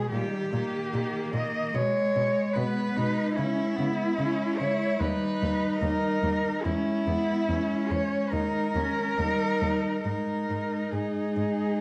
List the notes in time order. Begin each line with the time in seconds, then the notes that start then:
Already playing: G#4
0.10 A#2 D#3 G3 G4
0.51 A#2 D#3 A#3
0.92 A#2 D#3
1.33 A#2 D#3 D#5
1.73 B2 G#3 C#5
2.14 B2 G#3
2.53 B2 G#3 B3 B4
2.94 B2 G#3 D#4
3.34 C#3 G#3 C#4 E4
3.76 C#3 G#3 B3
4.16 C#3 G#3 C#4
4.57 C#3 G#3 E4 C#5
4.99 D#2 G3 D#4 B4
5.40 D#2 G3
5.80 D#2 G3 A#4
6.22 D#2 G3
6.63 E2 G#3 C#4 E4
7.06 E2 G#3 B3
7.48 E2 G#3 C#4
7.90 E2 G#3 C#5
8.31 D#2 G#3 D#4 A#4
8.74 D#2 G#3 C#4
9.17 D#2 G3 D#4
9.61 D#2 G3
10.04 G#2 G#3 D#4 A#4
10.49 G#2 G#3
10.92 G#2 G#3 G#4
11.36 G#2